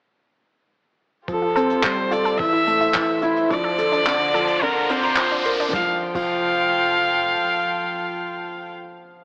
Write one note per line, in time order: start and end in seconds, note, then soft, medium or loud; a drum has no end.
1.27 2.38 F3 medium
1.27 1.55 F3 medium
1.27 2.38 F4 medium
1.27 2.38 G4 medium
1.27 3.48 A4 medium
1.27 1.86 A4 medium
1.27 kick medium
1.27 closed hi-hat soft
1.27 riser medium
1.42 1.48 F4 medium
1.56 1.83 C4 medium
1.56 1.62 A4 loud
1.56 closed hi-hat medium
1.70 closed hi-hat soft
1.83 2.10 G3 medium
1.83 1.93 F4 medium
1.83 2.14 C5 medium
1.83 kick medium
1.83 clap medium
2.11 3.52 A1 medium
2.11 2.17 F4 medium
2.11 2.38 A4 medium
2.11 2.39 D5 medium
2.11 closed hi-hat medium
2.25 2.31 A4 medium
2.25 closed hi-hat medium
2.39 2.55 E3 medium
2.39 3.49 A3 medium
2.39 4.60 C5 medium
2.39 3.49 E5 medium
2.39 3.19 E5 loud
2.39 kick medium
2.39 closed hi-hat soft
2.53 2.63 E4 medium
2.67 2.94 A3 medium
2.67 closed hi-hat medium
2.81 2.87 E4 medium
2.81 closed hi-hat soft
2.94 3.22 E3 medium
2.94 3.01 C5 medium
2.94 kick loud
2.94 clap medium
2.94 closed hi-hat soft
3.22 3.32 E4 medium
3.22 3.49 E4 medium
3.22 closed hi-hat medium
3.36 closed hi-hat medium
3.50 4.00 D2 medium
3.50 4.61 D3 medium
3.50 3.77 F3 medium
3.50 3.56 D4 medium
3.50 4.61 D4 medium
3.50 5.71 F4 medium
3.50 4.65 D5 loud
3.50 kick medium
3.50 closed hi-hat medium
3.64 3.70 A4 loud
3.78 4.05 A4 medium
3.78 closed hi-hat medium
3.92 4.02 D4 medium
3.92 closed hi-hat medium
4.06 4.22 D3 medium
4.06 kick loud
4.06 clap medium
4.20 4.26 D4 medium
4.34 4.61 F3 medium
4.34 4.40 A4 loud
4.34 closed hi-hat medium
4.47 closed hi-hat medium
4.61 4.89 D3 medium
4.61 5.72 A#3 medium
4.61 4.72 D4 medium
4.61 4.93 A#4 loud
4.61 5.72 C5 medium
4.61 5.72 D5 medium
4.61 kick loud
4.61 closed hi-hat soft
4.89 5.16 C4 medium
4.89 4.96 D4 medium
4.89 5.46 C5 loud
4.89 closed hi-hat medium
5.03 5.09 A#4 loud
5.03 closed hi-hat medium
5.16 5.44 F3 medium
5.16 kick loud
5.16 clap loud
5.32 5.41 D4 medium
5.45 5.72 A#4 medium
5.45 closed hi-hat medium
5.59 5.65 D4 medium
5.59 closed hi-hat medium
5.73 5.89 F1 loud
5.73 8.71 F3 medium
5.73 5.89 F3 medium
5.73 8.71 F4 medium
5.73 5.89 F4 loud
5.73 8.71 A4 medium
5.73 5.89 F5 medium
5.73 8.71 G5 medium
5.73 kick loud
5.73 snare medium
6.15 7.36 F1 loud
6.15 6.31 F3 medium
6.15 6.30 F4 medium
6.15 8.71 F5 loud
6.15 kick loud
6.15 crash medium